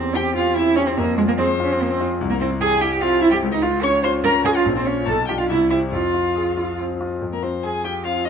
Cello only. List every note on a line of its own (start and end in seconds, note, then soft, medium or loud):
0.00 0.17 C4 loud
0.15 0.35 G4 loud
0.36 0.58 F4 loud
0.57 0.78 E4 loud
0.76 0.89 C#4 loud
0.87 0.99 C4 loud
0.97 1.17 A#3 loud
1.17 1.21 G#3 loud
1.28 1.32 A#3 loud
1.38 1.46 C4 loud
1.63 1.74 C#4 medium
1.73 1.83 C4 loud
1.82 1.92 A#3 medium
1.90 1.99 C4 loud
2.30 2.34 A#3 loud
2.41 2.49 C4 loud
2.61 2.82 G#4 loud
2.81 3.02 G4 loud
3.01 3.21 F4 loud
3.22 3.31 E4 loud
3.32 3.36 G4 loud
3.53 3.64 D#4 loud
3.62 3.85 F4 loud
3.83 4.02 C#5 loud
4.03 4.11 C5 loud
4.24 4.32 A#4 loud
4.45 4.49 G#4 loud
4.56 4.66 F4 loud
4.77 4.88 C4 medium
4.86 5.06 C#4 medium
5.07 5.15 A4 loud
5.28 5.33 G4 medium
5.39 5.49 F4 loud
5.49 5.70 E4 loud
5.70 5.78 E4 loud
5.92 6.77 F4 loud
7.32 7.36 A#3 medium
7.43 7.51 C4 medium
7.64 7.86 G#4 medium
7.84 8.06 G4 medium
8.05 8.28 F4 medium
8.26 8.29 D#4 medium